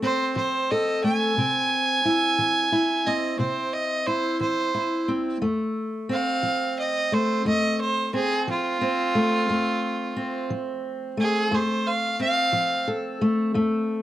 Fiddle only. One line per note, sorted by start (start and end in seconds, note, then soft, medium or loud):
0.03 0.35 C5 loud
0.37 0.73 C5 medium
0.71 1.03 D#5 medium
1.04 3.08 G#5 loud
3.07 3.39 D#5 medium
3.39 3.75 C5 medium
3.73 4.08 D#5 medium
4.07 4.40 C5 medium
4.41 5.07 C5 medium
6.12 6.77 F5 medium
6.79 7.16 D#5 medium
7.14 7.46 C5 medium
7.48 7.80 D#5 medium
7.81 8.13 C5 medium
8.15 8.47 G#4 medium
8.50 10.48 F4 loud
11.21 11.56 G#4 loud
11.54 11.89 C5 medium
11.87 12.19 F5 medium
12.21 12.86 F5 loud